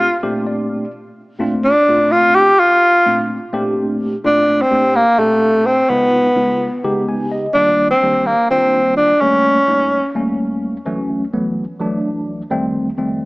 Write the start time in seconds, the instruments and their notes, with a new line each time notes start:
Already playing: tenor saxophone F4
0.23 tine electric piano A#2 A3 C4 D4 G4
0.47 tine electric piano D5
1.39 tine electric piano A#2 A3 C4 D4 F4
1.64 tenor saxophone D4
1.88 tine electric piano A#2 A3 C4 D4 F4
2.11 tenor saxophone F4
2.35 tenor saxophone G4
2.59 tenor saxophone F4
3.06 tine electric piano A#2 A3 C4 D4 F4
3.53 tine electric piano A#2 A3 C4 D4 G4
4.24 tine electric piano A#2 A3 C4 D4 F4, tenor saxophone D4
4.61 tenor saxophone C4
4.71 tine electric piano A#2 A3 C4 D4 G4
4.95 tenor saxophone A#3
5.18 tine electric piano A#2 A3 C4 D4 G4, tenor saxophone A3
5.66 tenor saxophone C4
5.89 tine electric piano C#3 G#3 B3 D#4 F4, tenor saxophone B3
6.35 tine electric piano C#3 G#3 B3 D#4 F4
6.84 tine electric piano C#3 G#3 B3 D#4 G4
7.09 tine electric piano G#5
7.31 tine electric piano D#5
7.54 tine electric piano C2 D#3 G3 A#3 D4 F4, tenor saxophone D4
7.90 tenor saxophone C4
8.02 tine electric piano C2 D#3 G3 A#3 D4 G4
8.26 tenor saxophone A#3
8.50 tine electric piano C2 D#3 G3 A#3 D4 F4, tenor saxophone C4
8.97 tenor saxophone D4
9.21 tine electric piano D#2 G3 A3 A#3 C#4, tenor saxophone C#4
9.67 tine electric piano D#2 G3 A3 A#3 D#4
10.15 tine electric piano D#2 G3 A3 A#3 C#4
10.85 tine electric piano D2 E3 F#3 A3 C#4
11.33 tine electric piano D2 E3 F#3 A3 B3
11.80 tine electric piano D2 E3 F#3 A3 D4
12.50 tine electric piano F2 D#3 G3 A3 C4
12.97 tine electric piano F2 D#3 G3 A3 C4